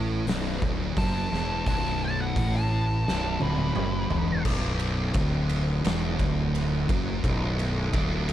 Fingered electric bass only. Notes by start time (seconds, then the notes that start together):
Already playing: A1
0.27 B0
0.62 D1
0.97 F#1
1.32 E1
1.67 B0
2.36 A1
3.07 B0
3.41 D1
3.76 F#1
4.10 E1
4.45 B0
5.15 D1
5.85 E1
6.20 D1
6.89 F#1
7.24 B0
7.94 D1